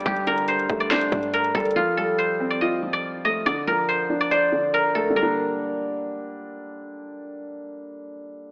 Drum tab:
HH |x-x-x-x-x-x-x---x-x-x-x-x-x-xxxx|--------------------------------|--------------------------------|--------------------------------|
SD |----------------o---------------|--------------------------------|--------------------------------|--------------------------------|
BD |o-----------o-------o-------o---|--------------------------------|--------------------------------|--------------------------------|

HH |--------------------------------|
SD |--------------------------------|
BD |--------------------------------|